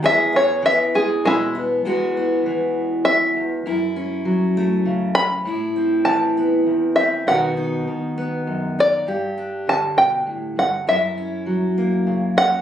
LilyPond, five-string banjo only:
\new Staff \with { instrumentName = "Five-string banjo" } { \time 6/8 \key e \major \tempo 4. = 66 e''8 cis''8 e''8 gis'8 <gis e'>8 r8 | r2 e''4~ | e''2~ e''8 b''8~ | b''4 a''4. e''8 |
fis''2 r8 d''8~ | d''4 a''8 g''4 fis''8 | e''4. r4 fis''8 | }